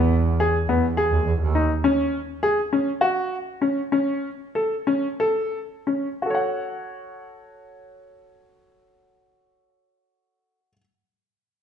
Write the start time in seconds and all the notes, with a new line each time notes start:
Already playing: E2 B3
0.40 G#4
0.67 E2 B3
0.97 G#4
1.11 D#2
1.25 E2
1.40 D#2
1.55 D#4
1.84 C#4
2.43 G#4
2.73 C#4
3.01 F#4
3.62 C#4
3.92 C#4
4.55 A4
4.87 C#4
5.20 A4
5.87 C#4
6.22 F#4 A4
6.30 C#5
6.35 F#5